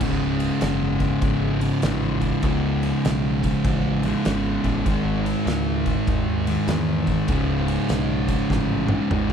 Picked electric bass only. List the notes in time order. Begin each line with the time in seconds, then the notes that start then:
0.01 C#1
0.62 F#1
1.22 G#1
1.83 A1
2.44 C#2
3.05 B1
3.65 A1
4.26 G#1
4.65 A1
4.86 G#1
5.46 C#2
6.08 D#2
6.67 E2
7.29 C#1
7.89 B1
8.51 A1
9.11 G#1